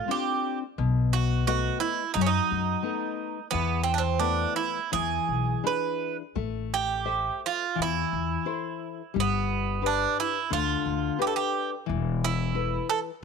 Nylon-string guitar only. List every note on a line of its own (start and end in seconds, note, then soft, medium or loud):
0.08 0.63 C4 soft
0.08 0.63 D4 soft
0.08 0.63 F4 medium
0.78 1.44 B2 medium
1.47 2.02 A3 medium
1.47 2.01 B3 soft
1.47 2.02 D#5 medium
2.16 2.82 F#3 medium
2.83 3.38 A3 soft
2.83 3.38 B3 soft
2.83 3.38 D#4 medium
3.51 4.19 E3 medium
4.20 4.77 A3 soft
4.20 4.78 B3 soft
4.20 4.78 E4 medium
4.92 5.63 E3 medium
5.64 6.21 D4 soft
5.64 6.22 E4 soft
5.64 6.21 G#4 soft
6.35 7.04 A3 medium
7.05 7.63 A4 soft
7.05 7.63 C5 medium
7.05 7.63 E5 soft
7.75 8.44 E3 medium
8.46 9.01 E4 soft
8.46 9.01 A4 soft
8.46 9.01 C5 soft
9.14 9.80 G3 medium
9.82 10.37 D4 soft
9.82 10.37 G4 soft
9.82 10.38 B4 medium
10.50 11.17 D3 medium
11.18 11.73 D4 soft
11.18 11.73 G4 soft
11.18 11.74 B4 medium
11.86 12.53 E3 medium
12.55 13.09 E4 medium
12.55 13.09 A4 soft
12.55 13.10 B4 medium